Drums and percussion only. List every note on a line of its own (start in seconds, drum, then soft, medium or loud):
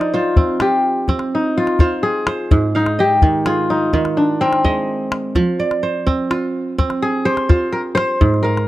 0.01 calabash click soft
0.36 calabash thump medium
0.60 calabash click medium
1.08 calabash thump medium
1.19 calabash click soft
1.67 calabash click soft
1.79 calabash thump medium
2.27 calabash click medium
2.51 calabash thump medium
2.86 calabash click soft
3.22 calabash thump medium
3.46 calabash click medium
3.93 calabash thump medium
4.05 calabash click soft
4.53 calabash click soft
4.65 calabash thump medium
5.12 calabash click medium
5.35 calabash thump medium
5.71 calabash click soft
6.07 calabash thump medium
6.31 calabash click medium
6.79 calabash thump medium
6.90 calabash click soft
7.37 calabash click soft
7.50 calabash thump medium
7.97 calabash click medium
8.21 calabash thump medium
8.34 calabash click soft
8.57 calabash click soft